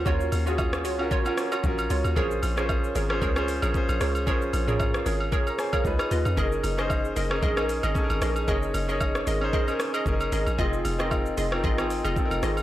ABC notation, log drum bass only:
X:1
M:4/4
L:1/16
Q:"Swing 16ths" 1/4=114
K:Gblyd
V:1 name="Log drum bass" clef=bass
E,,2 E,,4 D,,2 z4 B,,,2 D,, E,, | B,,,2 B,,,4 A,,,2 D,,3 B,,, z B,,, D,,2 | B,,,2 B,,,4 A,,,2 z4 D,, z E,, F,, | G,,,2 G,,,4 G,,,2 B,,,3 A,,, z A,,, B,,,2 |
G,,,2 G,,,4 A,,,2 z4 G,,,2 A,,, B,,, | F,,,2 F,,,4 F,,,2 A,,,3 F,,, z F,,, A,,,2 |]